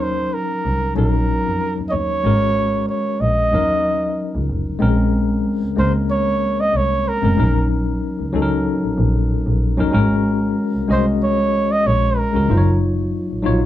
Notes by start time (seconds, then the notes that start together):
Already playing: D#2 F#3 C#4 D#4 A#4
0.02 C5
0.34 A#4
0.65 C2
0.95 A#1 F#3 C#4 D#4 A#4
1.46 F2
1.78 D#2
1.89 D#2 C#5 D#5
2.24 G#1 G#3 C#4 F#4 A#4
2.89 C#5
3.20 A#1 D#5
3.52 D#2 F#3 C#4 D#4 A#4
4.35 C#2
4.50 F1
4.79 A#1 G#3 C4 C#4 A#4
5.63 C#2
5.76 C#2 G#3 A#3 C#4 A#4 C5
6.11 C#5
6.60 D#5
6.74 C2 C#5
7.08 A#4
7.21 F1 G#3 C4 C#4 A#4
7.36 A#1 F#3 C#4 D#4 A#4
8.19 C#2
8.33 C#2 F#3 C#4 D#4 A4
8.42 A#4
8.84 A#1
8.98 A#1
9.29 A#1
9.47 A#1
9.77 D#2 F#3 C#4 D#4 A#4
9.91 G#1 G#3 C#4 F#4 A#4
10.75 C2
10.88 C2 G#3 C#4 F#4 D#5
10.92 C5
11.23 C#5
11.72 D#5
11.86 A#1 C#5
12.18 A#4
12.33 C#2 G#3 C#4 F#4 A#4
12.48 F#1 F#3 D#4 F4 C5
12.57 C#5
13.31 A#1
13.43 A#1 F#3 D#4 F4 C#5